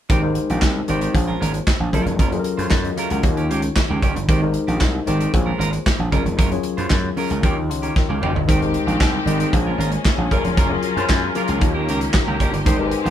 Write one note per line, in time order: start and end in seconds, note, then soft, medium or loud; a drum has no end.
0.09 0.37 G#1 medium
0.09 0.26 D#3 medium
0.09 0.21 G#3 medium
0.09 0.23 G#3 medium
0.09 0.22 C4 medium
0.09 0.21 D#4 medium
0.09 0.21 G4 medium
0.09 0.22 G4 medium
0.09 0.22 A#4 medium
0.09 0.22 C5 medium
0.09 kick loud
0.09 closed hi-hat medium
0.22 0.79 G#3 medium
0.22 0.79 D#4 medium
0.22 0.79 G4 medium
0.22 0.79 A#4 medium
0.22 0.79 C5 medium
0.22 muted clean electric guitar stroke soft
0.35 muted clean electric guitar stroke soft
0.35 closed hi-hat medium
0.50 0.59 A#1 medium
0.50 0.61 D#3 medium
0.50 0.61 G#3 soft
0.50 0.61 C4 medium
0.50 0.62 G4 soft
0.50 closed hi-hat soft
0.62 0.80 C2 medium
0.62 kick loud
0.62 snare loud
0.62 clap medium
0.75 muted clean electric guitar stroke soft
0.88 1.07 G#1 medium
0.88 1.02 D#3 medium
0.88 1.14 G#3 medium
0.88 1.01 G#3 medium
0.88 1.01 C4 medium
0.88 1.14 D#4 medium
0.88 1.15 G4 medium
0.88 1.00 G4 medium
0.88 1.15 A#4 medium
0.88 1.13 C5 medium
0.88 closed hi-hat medium
1.01 1.15 D#3 soft
1.01 1.14 G#3 soft
1.01 1.14 C4 soft
1.01 1.14 G4 soft
1.01 closed hi-hat soft
1.13 1.33 A#1 loud
1.13 1.81 A#3 medium
1.13 1.81 F4 medium
1.13 1.81 G#4 medium
1.13 1.82 C5 medium
1.13 1.82 C#5 medium
1.13 kick loud
1.13 closed hi-hat medium
1.27 1.39 G#3 soft
1.27 1.40 C#4 soft
1.27 1.40 F4 soft
1.27 1.40 A#4 medium
1.40 1.59 G#1 medium
1.40 1.57 G#3 medium
1.40 1.53 C#4 medium
1.40 1.53 F4 medium
1.40 1.52 A#4 medium
1.40 closed hi-hat medium
1.53 muted clean electric guitar stroke soft
1.53 closed hi-hat soft
1.67 kick loud
1.67 snare loud
1.67 clap medium
1.80 1.89 A#1 medium
1.80 muted clean electric guitar stroke soft
1.93 2.02 F#1 loud
1.93 2.27 F#3 medium
1.93 2.13 F#3 medium
1.93 2.27 C#4 medium
1.93 2.06 C#4 medium
1.93 2.27 F4 medium
1.93 2.06 F4 medium
1.93 2.27 G#4 medium
1.93 2.27 A#4 medium
1.93 2.05 A#4 medium
1.93 kick medium
1.93 closed hi-hat medium
2.06 2.19 F1 medium
2.06 muted clean electric guitar stroke soft
2.06 closed hi-hat soft
2.19 2.37 F#1 medium
2.19 2.35 F#3 medium
2.19 2.32 C#4 medium
2.19 2.31 F4 medium
2.19 2.31 A#4 medium
2.19 kick loud
2.19 closed hi-hat medium
2.32 2.88 F#3 medium
2.32 2.88 C#4 medium
2.32 2.45 F4 medium
2.32 2.46 G#4 medium
2.32 2.39 A4 medium
2.32 muted clean electric guitar stroke soft
2.32 closed hi-hat soft
2.39 2.49 A#4 medium
2.44 muted clean electric guitar stroke soft
2.44 closed hi-hat medium
2.57 2.67 F#2 medium
2.57 2.70 F#3 soft
2.57 2.70 C#4 soft
2.57 2.71 F4 medium
2.57 2.71 C5 soft
2.57 closed hi-hat soft
2.70 2.89 F#2 medium
2.70 2.85 F4 medium
2.70 2.84 C#5 medium
2.70 kick loud
2.70 snare medium
2.70 clap medium
2.84 2.97 F#4 medium
2.84 2.97 D#5 medium
2.84 muted clean electric guitar stroke soft
2.84 closed hi-hat soft
2.97 3.10 F#3 medium
2.97 3.10 C#4 medium
2.97 3.10 F4 medium
2.97 3.10 G#4 soft
2.97 3.09 A#4 medium
2.97 3.10 F5 medium
2.97 closed hi-hat medium
3.10 3.20 C#2 medium
3.10 3.24 F#3 soft
3.10 3.24 C#4 soft
3.10 3.24 F4 soft
3.10 3.23 A#4 soft
3.10 3.36 A#4 medium
3.10 3.36 F#5 medium
3.10 closed hi-hat soft
3.23 3.50 D#2 loud
3.23 4.13 D#3 medium
3.23 4.13 D#4 medium
3.23 4.13 F4 medium
3.23 4.13 G4 medium
3.23 4.14 C#5 medium
3.23 kick loud
3.23 closed hi-hat medium
3.37 3.48 D#3 soft
3.37 3.49 A#3 soft
3.37 3.50 C#4 soft
3.37 3.50 G4 medium
3.37 closed hi-hat soft
3.50 3.68 C#2 medium
3.50 3.66 D#3 medium
3.50 3.63 A#3 medium
3.50 3.62 C#4 medium
3.50 3.62 G4 medium
3.50 closed hi-hat medium
3.62 muted clean electric guitar stroke soft
3.62 closed hi-hat soft
3.76 muted clean electric guitar stroke soft
3.76 kick loud
3.76 snare loud
3.76 clap medium
3.90 3.99 C#2 medium
3.90 4.01 D#3 soft
3.90 4.02 A#3 medium
3.90 4.02 C#4 medium
3.90 4.02 G4 medium
4.02 4.12 F#1 medium
4.02 4.19 D#3 medium
4.02 4.15 A#3 medium
4.02 4.15 C#4 medium
4.02 4.14 G4 medium
4.02 kick medium
4.02 closed hi-hat medium
4.16 4.25 G1 medium
4.16 muted clean electric guitar stroke soft
4.16 closed hi-hat soft
4.28 4.56 G#1 medium
4.28 4.45 D#3 medium
4.28 4.40 G#3 medium
4.28 4.42 G#3 medium
4.28 4.41 C4 medium
4.28 4.40 D#4 medium
4.28 4.40 G4 medium
4.28 4.41 G4 medium
4.28 4.41 A#4 medium
4.28 4.41 C5 medium
4.28 kick loud
4.28 closed hi-hat medium
4.42 4.98 G#3 medium
4.42 4.98 D#4 medium
4.42 4.98 G4 medium
4.42 4.99 A#4 medium
4.42 4.99 C5 medium
4.42 muted clean electric guitar stroke soft
4.54 muted clean electric guitar stroke soft
4.54 closed hi-hat soft
4.67 4.77 A#1 loud
4.67 4.79 D#3 soft
4.67 4.79 G#3 medium
4.67 4.80 C4 medium
4.67 4.80 G4 medium
4.67 closed hi-hat soft
4.80 4.99 C2 medium
4.80 muted clean electric guitar stroke soft
4.80 kick loud
4.80 snare medium
4.80 clap medium
4.94 muted clean electric guitar stroke soft
5.06 5.25 G#1 medium
5.06 5.20 D#3 medium
5.06 5.33 G#3 medium
5.06 5.19 G#3 medium
5.06 5.19 C4 medium
5.06 5.33 D#4 medium
5.06 5.34 G4 medium
5.06 5.18 G4 medium
5.06 5.34 A#4 medium
5.06 5.33 C5 medium
5.06 closed hi-hat medium
5.19 5.33 D#3 soft
5.19 5.32 G#3 soft
5.19 5.33 C4 soft
5.19 5.33 G4 medium
5.19 closed hi-hat soft
5.32 5.51 A#1 loud
5.32 6.00 A#3 medium
5.32 6.00 F4 medium
5.32 6.01 G#4 medium
5.32 6.01 C5 medium
5.32 6.01 C#5 medium
5.32 kick loud
5.32 closed hi-hat medium
5.46 5.57 G#3 soft
5.46 5.58 C#4 medium
5.46 5.58 F4 medium
5.46 5.59 A#4 medium
5.58 5.77 G#1 medium
5.58 5.75 G#3 medium
5.58 5.72 C#4 medium
5.58 5.71 F4 medium
5.58 5.71 A#4 medium
5.58 closed hi-hat medium
5.72 muted clean electric guitar stroke soft
5.72 closed hi-hat soft
5.86 kick loud
5.86 snare loud
5.86 clap medium
5.98 6.08 A#1 medium
5.98 muted clean electric guitar stroke soft
6.11 6.21 F#1 medium
6.11 6.45 F#3 medium
6.11 6.28 F#3 medium
6.11 6.46 C#4 medium
6.11 6.25 C#4 medium
6.11 6.46 F4 medium
6.11 6.24 F4 medium
6.11 6.46 G#4 medium
6.11 6.46 A#4 medium
6.11 6.23 A#4 medium
6.11 kick medium
6.11 closed hi-hat medium
6.24 6.39 F1 medium
6.24 muted clean electric guitar stroke medium
6.24 closed hi-hat soft
6.37 6.57 F#1 medium
6.37 6.54 F#3 medium
6.37 6.51 C#4 medium
6.37 6.51 F4 medium
6.37 6.50 A#4 medium
6.37 kick loud
6.37 closed hi-hat medium
6.51 7.07 F#3 medium
6.51 7.08 C#4 medium
6.51 7.08 F4 medium
6.51 7.08 G#4 medium
6.51 7.08 C#5 medium
6.51 muted clean electric guitar stroke soft
6.51 closed hi-hat soft
6.63 muted clean electric guitar stroke soft
6.63 closed hi-hat medium
6.77 6.87 F#2 medium
6.77 6.90 F#3 soft
6.77 6.90 C#4 soft
6.77 6.90 F4 medium
6.77 6.90 C5 medium
6.77 closed hi-hat soft
6.90 7.09 F#2 medium
6.90 muted clean electric guitar stroke soft
6.90 kick loud
6.90 snare medium
6.90 clap medium
7.04 muted clean electric guitar stroke soft
7.17 7.43 F#3 medium
7.17 7.30 F#3 medium
7.17 7.43 C#4 medium
7.17 7.30 C#4 medium
7.17 7.42 F4 medium
7.17 7.30 F4 medium
7.17 7.44 G#4 medium
7.17 7.29 A#4 medium
7.17 7.44 A#4 medium
7.17 open hi-hat medium
7.30 7.39 C#2 medium
7.30 7.42 F#3 soft
7.30 7.43 C#4 soft
7.30 7.43 F4 soft
7.30 7.43 A#4 soft
7.30 closed hi-hat soft
7.43 7.70 D#2 medium
7.43 8.32 D#3 medium
7.43 7.59 D#3 medium
7.43 7.57 A#3 medium
7.43 7.56 C#4 medium
7.43 8.33 D#4 medium
7.43 8.33 F4 medium
7.43 7.70 G4 medium
7.43 7.56 G4 medium
7.43 7.70 C#5 medium
7.43 kick loud
7.43 closed hi-hat medium
7.57 muted clean electric guitar stroke soft
7.70 7.88 C#2 medium
7.70 7.83 D#5 soft
7.70 7.82 C6 medium
7.70 muted clean electric guitar stroke soft
7.70 closed hi-hat medium
7.82 7.94 D#3 soft
7.82 7.95 A#3 soft
7.82 7.95 C#4 soft
7.82 7.95 G4 medium
7.82 7.96 C#5 medium
7.82 7.95 A#5 medium
7.82 closed hi-hat soft
7.95 8.09 A#4 soft
7.95 8.08 G5 medium
7.95 muted clean electric guitar stroke soft
7.95 kick loud
7.95 snare medium
8.09 8.18 C#2 medium
8.09 8.20 D#3 soft
8.09 8.21 A#3 soft
8.09 8.22 C#4 medium
8.09 8.21 G4 medium
8.09 8.34 F5 medium
8.22 8.31 F#1 medium
8.22 8.38 D#3 medium
8.22 8.34 A#3 medium
8.22 8.34 C#4 medium
8.22 8.33 G4 medium
8.22 mid tom medium
8.34 8.44 G1 medium
8.34 8.47 G4 medium
8.34 8.60 D#5 medium
8.34 muted clean electric guitar stroke soft
8.34 floor tom medium
8.48 8.75 G#1 loud
8.48 8.64 D#3 medium
8.48 8.59 G#3 medium
8.48 8.61 G#3 medium
8.48 10.30 G#3 medium
8.48 8.61 C4 medium
8.48 9.53 C4 medium
8.48 8.59 D#4 medium
8.48 8.59 G4 medium
8.48 9.52 G4 medium
8.48 8.60 G4 medium
8.48 8.59 A#4 medium
8.48 8.60 C5 medium
8.48 kick loud
8.48 closed hi-hat loud
8.61 9.17 G#3 medium
8.61 9.17 D#4 medium
8.61 9.17 G4 medium
8.61 9.17 A#4 medium
8.61 9.18 C5 medium
8.61 muted clean electric guitar stroke soft
8.61 closed hi-hat soft
8.74 muted clean electric guitar stroke soft
8.74 closed hi-hat medium
8.87 8.96 A#1 medium
8.87 8.99 D#3 soft
8.87 8.99 G#3 medium
8.87 9.00 C4 medium
8.87 9.00 G4 medium
8.87 closed hi-hat soft
9.00 9.18 C2 medium
9.00 muted clean electric guitar stroke soft
9.00 kick loud
9.00 snare medium
9.00 clap medium
9.13 muted clean electric guitar stroke soft
9.25 9.44 G#1 medium
9.25 9.40 D#3 medium
9.25 9.52 G#3 medium
9.25 9.40 G#3 medium
9.25 9.39 C4 medium
9.25 9.52 D#4 medium
9.25 9.53 G4 medium
9.25 9.39 G4 medium
9.25 9.53 A#4 medium
9.25 9.53 D#5 medium
9.25 closed hi-hat medium
9.40 9.53 D#3 soft
9.40 9.52 G#3 medium
9.40 9.52 C4 medium
9.40 9.52 G4 medium
9.40 closed hi-hat medium
9.52 9.71 A#1 loud
9.52 10.19 A#3 medium
9.52 10.31 A#3 medium
9.52 11.59 C#4 medium
9.52 10.20 F4 medium
9.52 10.20 G#4 medium
9.52 10.20 C5 medium
9.52 10.20 C#5 medium
9.52 muted clean electric guitar stroke soft
9.52 kick loud
9.52 closed hi-hat medium
9.66 9.77 G#3 soft
9.66 9.78 C#4 soft
9.66 9.78 F4 medium
9.66 9.79 A#4 medium
9.78 9.96 G#1 medium
9.78 9.95 G#3 medium
9.78 9.92 C#4 medium
9.78 9.91 F4 medium
9.78 9.91 A#4 medium
9.78 closed hi-hat medium
9.92 muted clean electric guitar stroke soft
9.92 closed hi-hat soft
10.05 kick loud
10.05 snare loud
10.05 clap medium
10.18 10.27 A#1 medium
10.18 muted clean electric guitar stroke soft
10.29 10.40 F#1 loud
10.29 11.59 F#3 medium
10.29 10.64 F#3 medium
10.29 10.47 A#3 medium
10.29 10.65 C#4 medium
10.29 10.44 C#4 medium
10.29 11.60 F4 medium
10.29 10.65 F4 medium
10.29 10.44 F4 medium
10.29 10.65 G#4 medium
10.29 11.60 A#4 medium
10.29 10.65 A#4 medium
10.29 10.43 A#4 medium
10.29 kick medium
10.29 closed hi-hat medium
10.44 10.58 F1 medium
10.44 muted clean electric guitar stroke soft
10.44 closed hi-hat soft
10.57 10.75 F#1 medium
10.57 10.73 A#3 medium
10.57 10.71 C#4 medium
10.57 10.70 F4 medium
10.57 10.70 A#4 medium
10.57 kick loud
10.57 closed hi-hat loud
10.69 11.26 F#3 medium
10.69 11.26 C#4 medium
10.69 11.26 F4 medium
10.69 11.26 G#4 medium
10.69 11.27 A#4 medium
10.69 muted clean electric guitar stroke soft
10.83 muted clean electric guitar stroke soft
10.83 closed hi-hat medium
10.97 11.06 F#2 loud
10.97 11.09 A#3 soft
10.97 11.10 C#4 medium
10.97 11.10 F4 medium
10.97 11.09 C5 medium
10.97 closed hi-hat soft
11.09 11.27 F#2 loud
11.09 muted clean electric guitar stroke soft
11.09 kick loud
11.09 snare loud
11.09 clap medium
11.23 muted clean electric guitar stroke soft
11.35 11.62 F#3 medium
11.35 11.49 A#3 medium
11.35 11.62 C#4 medium
11.35 11.49 C#4 medium
11.35 11.60 F4 medium
11.35 11.48 F4 medium
11.35 11.62 G#4 medium
11.35 11.62 A#4 medium
11.35 11.48 A#4 medium
11.35 closed hi-hat medium
11.48 11.58 C#2 medium
11.48 11.61 A#3 medium
11.48 11.61 C#4 soft
11.48 11.62 F4 soft
11.48 11.61 A#4 medium
11.48 closed hi-hat soft
11.59 11.88 D#2 loud
11.59 12.65 D#3 medium
11.59 12.51 D#3 medium
11.59 12.64 A#3 medium
11.59 12.65 C#4 medium
11.59 12.51 D#4 medium
11.59 12.51 F4 medium
11.59 13.10 G4 medium
11.59 12.51 G4 medium
11.59 12.52 C#5 medium
11.59 muted clean electric guitar stroke soft
11.59 kick loud
11.59 closed hi-hat medium
11.74 11.87 A#3 soft
11.74 11.88 C#4 soft
11.74 11.88 G4 medium
11.74 11.87 A#4 medium
11.88 12.06 C#2 medium
11.88 12.04 A#3 medium
11.88 12.01 C#4 medium
11.88 12.01 G4 medium
11.88 12.00 A#4 medium
11.88 closed hi-hat medium
12.01 muted clean electric guitar stroke soft
12.01 closed hi-hat soft
12.14 kick loud
12.14 snare loud
12.14 clap medium
12.27 12.36 C#2 medium
12.27 12.39 A#3 soft
12.27 12.40 C#4 soft
12.27 12.40 G4 medium
12.27 12.40 A#4 soft
12.40 12.49 F#1 medium
12.40 12.56 A#3 medium
12.40 12.53 C#4 medium
12.40 12.52 G4 medium
12.40 12.52 A#4 medium
12.40 kick medium
12.40 closed hi-hat medium
12.53 12.62 G1 medium
12.53 muted clean electric guitar stroke soft
12.53 closed hi-hat soft
12.65 12.93 G#1 medium
12.65 12.77 G#3 medium
12.65 12.82 G#3 medium
12.65 13.10 G#3 medium
12.65 13.10 C4 medium
12.65 12.77 D#4 medium
12.65 12.79 D#4 medium
12.65 12.78 G4 medium
12.65 12.79 G4 loud
12.65 12.78 A#4 medium
12.65 12.78 C5 loud
12.65 12.78 C5 medium
12.65 kick loud
12.65 closed hi-hat loud
12.79 13.10 G#3 medium
12.79 13.10 D#4 medium
12.79 13.10 G4 medium
12.79 13.10 A#4 medium
12.79 12.86 B4 medium
12.79 muted clean electric guitar stroke soft
12.86 13.10 C5 loud
12.91 muted clean electric guitar stroke soft
12.91 closed hi-hat medium
13.04 13.10 A#1 medium
13.04 13.10 G#3 soft
13.04 13.10 D#4 medium
13.04 13.10 G4 medium
13.04 13.10 C5 medium
13.04 closed hi-hat soft